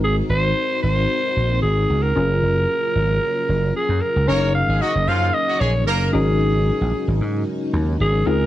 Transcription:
Already playing: G#1 D#3 G#3 C4 D#4 F#4 A#4
0.04 G#4
0.29 G#1 C5
0.82 G#1 C5
1.37 A#1
1.62 G#1 G#4
1.90 C#2
2.02 A#4
2.16 F#1 C#3 F#3 A#3 C#4 F4 G#4 A#4
2.43 F#1
2.95 G#1
3.49 F#1
3.76 G#4
3.89 F#2
4.02 A#4
4.16 C#2
4.28 F#1 C#3 F#3 A#3 C#4 D#4 G#4 A#4 C#5
4.55 F5
4.68 G#1 G#3 G#4
4.80 F#3 F#4 D#5
4.95 F#1
5.07 F#2 F3 F4 F5
5.34 D#5
5.48 F#3 F#4
5.60 A#1 G#3 G#4 C#5
5.87 F#1 A#3 A#4
6.13 G#1 G#3 C#4 D#4 F#4 G#4 A#4
6.81 A#1
7.08 G#1
7.21 G#2
7.73 D#2
8.00 G#1 G#4
8.26 C#2 G#3 C4 D#4 F4 G#4 A#4 F5

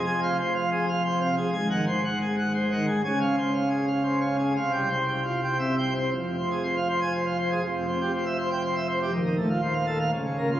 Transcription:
0.06 F1 F2 G#5
0.23 C3 F5
0.39 C5
0.55 F5
0.72 G#4
0.88 F5
1.04 C5
1.21 C3 F5
1.37 G#4
1.53 G#1 G#2 G#5
1.70 D#3 F#5
1.87 C5
2.04 F#5
2.21 G#4
2.38 F#5
2.54 C5
2.71 D#3 F#5
2.88 G#4
3.04 C#2 C#3 G#5
3.21 C#4 F5
3.38 C5
3.54 F5
3.70 G#4
3.87 F5
4.03 C5
4.20 C#4 F5
4.39 G#4
4.56 C2 C3 F5
4.73 G3 G5
4.90 C5
5.07 G5
5.25 F4
5.43 G5
5.59 C2 C3 E5
5.77 C4 G5
5.95 C5
6.12 F1 F2
6.25 C3
6.38 C4
6.51 G#4
6.64 C5
6.76 F5
6.89 C5
7.01 G#5
7.13 C5
7.26 F5
7.38 C5
7.51 G#4
7.63 F1 F2
7.75 C3
7.88 C4
8.00 G4
8.13 C5
8.26 E5
8.38 C5
8.51 G5
8.64 C5
8.76 E5
8.88 C5
9.01 G4
9.13 D#1 D#2
9.25 D#3
9.38 A3
9.50 F4
9.61 C5
9.73 F5
9.86 A4
9.99 F5
10.11 C#1 C#2
10.25 C#3
10.38 A#3
10.51 F4

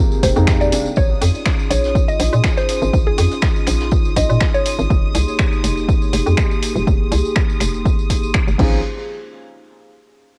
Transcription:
Already playing: F1 C3 G3 G#3 A#3 C4 D#4 A#4 G5
0.12 tambourine
0.23 F1 C5, kick, open hi-hat, tambourine
0.36 F2 C3 G3 G#3 A#3 D#4, tambourine
0.47 finger snap, kick, snare, tambourine
0.61 D5, tambourine
0.72 D#1 C3 G3 G#3 A#3 D4, open hi-hat, tambourine
0.86 tambourine
0.96 A#1 C#4 D#4 F4 G#4 C#5 C6 D#6, kick, tambourine
1.21 F2, open hi-hat, tambourine
1.35 tambourine
1.45 finger snap, kick, snare, tambourine
1.59 tambourine
1.71 A#1 C#5, open hi-hat, tambourine
1.84 snare, tambourine
1.95 kick, tambourine
2.08 D#5, tambourine
2.20 A#1, open hi-hat, tambourine
2.33 A#2, tambourine
2.44 finger snap, kick, snare, tambourine
2.57 C5, snare, tambourine
2.69 snare, open hi-hat, tambourine
2.82 G#1, tambourine
2.93 A#1, kick, tambourine
3.07 G#4
3.18 F2, open hi-hat, tambourine
3.31 closed hi-hat, tambourine
3.42 finger snap, kick, snare, tambourine
3.56 tambourine
3.67 A#1, finger snap, open hi-hat, tambourine
3.80 snare, tambourine
3.91 kick, tambourine
4.05 tambourine
4.16 A#1 D#5, kick, open hi-hat, tambourine
4.30 A#2, tambourine
4.41 finger snap, kick, snare, tambourine
4.54 C#5, tambourine
4.66 open hi-hat, tambourine
4.79 G#1, tambourine
4.90 F1 A#3 G4 G#4, kick, tambourine
5.15 C2, open hi-hat, tambourine
5.28 tambourine
5.39 finger snap, kick, tambourine
5.53 tambourine
5.64 F1, open hi-hat, tambourine
5.77 tambourine
5.89 kick, tambourine
6.02 tambourine
6.13 F1, open hi-hat, tambourine
6.26 F2, tambourine
6.37 finger snap, kick, tambourine
6.51 tambourine
6.62 open hi-hat, tambourine
6.75 D#1, tambourine
6.87 F1, kick, tambourine
7.12 C2, open hi-hat, tambourine
7.25 tambourine
7.36 finger snap, kick, tambourine
7.50 tambourine
7.60 F1, finger snap, open hi-hat, tambourine
7.74 tambourine
7.85 kick, tambourine
7.99 tambourine
8.10 kick, open hi-hat, tambourine
8.23 D#1, tambourine
8.34 finger snap, kick, tambourine
8.48 F1, tambourine
8.58 A#1 F3 C4 C#4 D#4 F4 G#4 C5, kick, crash

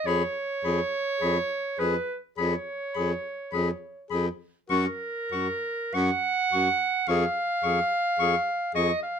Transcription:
0.06 F2 G#4 C#5 B5
0.64 F2 G#4 B5
1.21 F2 G#4 B5
1.79 F2 G#4 B4 B5
2.37 F2 G#4 C#5 B5
2.95 F2 G#4 B5
3.52 F2 G#4 B5
4.10 F2 G#4 B5
4.69 F#2 F#4 A#4 C#6
5.32 F#2 F#4 C#6
5.94 F#2 F#4 F#5 C#6
6.52 F#2 F#4 C#6
7.08 F2 G#4 F5 C#6
7.64 F2 G#4 C#6
8.19 F2 G#4 C#6
8.74 F2 G#4 D#5 C#6
9.03 F5

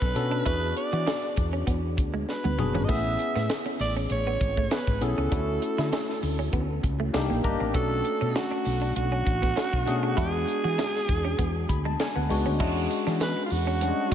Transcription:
Already playing: C#4 D4 F#4 A4 B4
0.02 B1, kick
0.15 B2 C#4 D4 F#4 A4, muted clean electric guitar stroke, closed hi-hat
0.31 D4
0.45 E2 B3 D4 E4 F#4 G#4 B4, kick, closed hi-hat
0.76 D5, muted clean electric guitar stroke, closed hi-hat
0.93 E3 F#4
1.07 D4, snare, closed hi-hat
1.36 E2, muted clean electric guitar stroke, kick, closed hi-hat
1.53 C#4
1.67 E2 B3, kick, closed hi-hat
1.97 D2, muted clean electric guitar stroke, kick, closed hi-hat
2.14 G#3
2.29 B4, snare
2.44 D2 B3, high tom
2.58 F#1 B3 D4 F#4 G#4, muted clean electric guitar stroke, mid tom
2.75 G#1 C#4, floor tom
2.84 D#5
2.88 A1 A3 B3 C#4 E4 G#4 E5, kick, splash
3.19 muted clean electric guitar stroke, closed hi-hat
3.36 A2 B3, snare
3.50 snare, closed hi-hat
3.66 C#4
3.79 A1 D5, muted clean electric guitar stroke, open hi-hat
3.96 C#4
4.10 A1 C#5, closed hi-hat
4.27 B3
4.41 G#1, muted clean electric guitar stroke, kick, closed hi-hat
4.57 A3, kick
4.71 B3 B4, snare, closed hi-hat
4.87 G#1, kick
5.01 B1 B3 C#4 E4 G#4 A4, muted clean electric guitar stroke, closed hi-hat
5.18 C#2 C#4
5.31 D2 A3 C#4 D4 E4 F#4, kick, closed hi-hat
5.62 muted clean electric guitar stroke, closed hi-hat
5.78 D3 E4, snare
5.92 D4, snare, closed hi-hat
6.09 snare
6.22 D2, muted clean electric guitar stroke, open hi-hat
6.39 C#4
6.53 D2 B3, kick, closed hi-hat
6.83 C#2, muted clean electric guitar stroke, kick, closed hi-hat
7.00 A3
7.13 C2 A#3 D4 D#4 G4 G5, snare, closed hi-hat
7.30 A#1 A#3
7.44 G1 A#3 D4 D#4 G4 A#5, muted clean electric guitar stroke, kick, closed hi-hat
7.60 A1 C4
7.74 B1 A3 B3 C#4 D4 F#4 A4, kick, closed hi-hat
8.05 muted clean electric guitar stroke, closed hi-hat
8.21 B2 C#4
8.35 F#4, snare, closed hi-hat
8.51 D4
8.65 B1, muted clean electric guitar stroke, open hi-hat
8.82 D4
8.96 B1 F#4, closed hi-hat
9.12 C#4
9.26 A1, muted clean electric guitar stroke, kick, closed hi-hat
9.42 B3, kick, snare
9.56 C#4, snare, closed hi-hat
9.73 B1, kick
9.86 B2 A3 C#4 D4 G#4, muted clean electric guitar stroke, closed hi-hat
10.03 D4
10.17 E2 G#3 B3 D4 E4 G#4, kick, closed hi-hat
10.24 F#4
10.48 muted clean electric guitar stroke, closed hi-hat
10.64 E3 F#4
10.78 D4, snare, closed hi-hat
10.95 snare
11.08 E2, muted clean electric guitar stroke, kick, closed hi-hat
11.25 C#4
11.39 E2 B3, kick, closed hi-hat
11.69 D2 B5, muted clean electric guitar stroke, kick, closed hi-hat
11.85 G#3 A5
12.00 G#5, snare, closed hi-hat
12.16 D2 B3 F#5
12.29 C#2 G#3 B3 D4 F#4, muted clean electric guitar stroke, open hi-hat
12.46 D2 C#4
12.59 E2 G#3 C#4 D4 E4 F#4, kick, crash, tambourine
12.90 muted clean electric guitar stroke, closed hi-hat, tambourine
13.07 E3 D4, snare
13.21 B3 B4, snare, closed hi-hat, tambourine
13.37 muted clean electric guitar stroke
13.46 F4
13.50 E2 F#4, open hi-hat, tambourine
13.67 C#4
13.81 G3 C#4 D4 F#4, muted clean electric guitar stroke, closed hi-hat, tambourine
13.88 G#3
14.11 D4, closed hi-hat

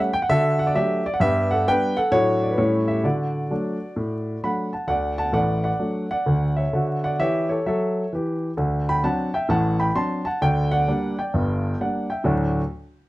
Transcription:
0.00 F#5
0.13 G5
0.22 F#5
0.29 D3 F#4 A4 E5
0.59 F#5
0.67 D5
0.75 F#3 A3 D4 G4 E5
1.06 D5
1.14 F#5
1.20 G2 B3 G4 E5
1.51 A4 F#5
1.67 G3 B3 D4 B4 G5
1.97 A4 F#5
2.11 A2 F#3 A3 D4 F#4 C#5
2.43 D5
2.51 B4
2.57 A2 G3 A3 C#4 E4 C#5
2.88 G4 E5
3.04 D3 F#4 D5
3.50 F#3 A3 D4
3.96 A2
4.44 F#3 A3 D4 F#5 B5
4.73 F#5 A5
4.88 D2 D3 D5 F#5
5.18 F#5 A5
5.32 A1 A2 D5 F#5
5.64 D5 F#5
5.79 F#3 A3 D4
6.11 D5 F#5
6.26 D2 D3
6.56 C#5 E5
6.73 D3 F#4
7.04 D5 F#5
7.19 E3 G4 C#5 E5
7.49 A4 C#5
7.66 F#3 A4 C#5 E5
8.13 E3 G4
8.57 D2 D3
8.89 G5 B5
9.04 F#3 C4 D4 F#5 A5
9.34 E5 G5
9.49 A1 A2 F#5 A5
9.80 G5 B5
9.95 F#3 C4 D4 A5 C6
10.25 F#5 A5
10.41 D2 D3 D5 G5
10.71 D5 F#5
10.88 G3 A#3 D4
11.19 D5 G5
11.34 G1 G2
11.80 G3 A#3 D4 D5 F#5
12.10 E5 G5
12.24 D2 A2 F#3 A3 D4 F#4 D5

